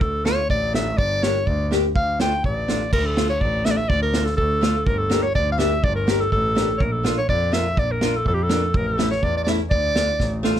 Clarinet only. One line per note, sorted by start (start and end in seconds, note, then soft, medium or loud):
0.01 0.27 A4 medium
0.25 0.49 C#5 medium
0.50 0.73 D5 loud
0.75 0.99 E5 medium
0.97 1.25 D5 loud
1.23 1.48 C#5 medium
1.47 1.71 D5 medium
1.96 2.18 F5 medium
2.21 2.43 G5 medium
2.46 2.90 D5 medium
2.93 3.07 A#4 loud
3.06 3.29 A4 medium
3.29 3.42 C#5 medium
3.41 3.66 D5 medium
3.65 3.72 E5 loud
3.71 3.78 D5 medium
3.77 3.90 E5 medium
3.89 4.01 D5 loud
4.02 4.27 A#4 medium
4.25 4.36 A4 medium
4.37 4.87 A4 medium
4.86 5.00 A#4 medium
4.98 5.24 A4 medium
5.22 5.34 C#5 medium
5.35 5.51 D5 medium
5.52 5.60 F5 medium
5.58 5.85 E5 medium
5.84 5.95 D5 medium
5.96 6.22 A#4 medium
6.20 6.32 A4 medium
6.32 6.79 A4 medium
6.78 6.93 A#4 medium
6.78 6.83 C#5 medium
6.92 7.17 A4 medium
7.18 7.29 C#5 medium
7.29 7.55 D5 medium
7.53 7.80 E5 medium
7.79 7.93 D5 loud
7.91 8.17 A#4 medium
8.16 8.27 A4 medium
8.28 8.36 A4 medium
8.34 8.44 G4 medium
8.43 8.78 A4 medium
8.77 8.89 A#4 medium
8.87 9.10 A4 medium
9.11 9.25 C#5 medium
9.24 9.35 D5 medium
9.37 9.40 D5 medium
9.44 9.48 D5 medium
9.71 10.39 D5 loud